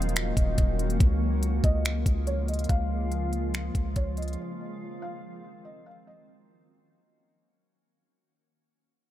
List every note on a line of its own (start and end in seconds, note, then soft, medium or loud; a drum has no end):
0.00 0.33 D#1 loud
0.00 0.97 D#3 medium
0.00 0.99 F#3 medium
0.00 0.99 A#3 medium
0.00 0.99 C#4 medium
0.00 0.99 F#4 medium
0.00 0.96 D#5 medium
0.00 closed hi-hat medium
0.09 closed hi-hat soft
0.16 finger snap loud
0.16 closed hi-hat medium
0.37 0.57 D#1 loud
0.37 kick medium
0.37 closed hi-hat medium
0.58 0.99 D#1 loud
0.58 kick loud
0.58 closed hi-hat medium
0.79 closed hi-hat medium
0.90 closed hi-hat soft
1.00 1.61 C#2 loud
1.00 4.35 C#3 medium
1.00 6.03 F3 medium
1.00 6.03 G#3 medium
1.00 4.35 A#3 medium
1.00 6.03 F4 medium
1.00 kick loud
1.00 closed hi-hat medium
1.43 closed hi-hat medium
1.64 2.04 C#2 loud
1.64 2.23 D#5 medium
1.64 kick medium
1.64 closed hi-hat medium
1.85 finger snap loud
1.85 closed hi-hat medium
2.06 2.67 C#2 loud
2.06 kick medium
2.06 closed hi-hat medium
2.27 2.47 C#5 medium
2.27 closed hi-hat medium
2.48 2.69 D#5 medium
2.48 closed hi-hat medium
2.54 closed hi-hat medium
2.59 closed hi-hat medium
2.64 closed hi-hat medium
2.69 3.71 C#2 loud
2.69 3.50 F5 loud
2.69 kick loud
2.69 closed hi-hat medium
3.12 closed hi-hat medium
3.33 closed hi-hat medium
3.54 finger snap loud
3.54 closed hi-hat medium
3.75 3.95 C#2 loud
3.75 kick medium
3.75 closed hi-hat medium
3.96 4.37 C#2 loud
3.96 4.16 C#5 medium
3.96 kick medium
3.96 closed hi-hat medium
4.17 4.37 D#5 medium
4.17 closed hi-hat medium
4.22 closed hi-hat medium
4.28 closed hi-hat medium
4.33 closed hi-hat medium
4.38 7.73 D#3 medium
4.38 6.06 C4 medium
5.02 5.61 F5 medium
5.65 5.85 D#5 medium
5.86 6.06 F5 medium
6.07 7.75 F#3 medium
6.07 7.75 A#3 medium
6.07 7.75 C#4 medium
6.07 7.75 F#4 medium
6.07 7.72 D#5 medium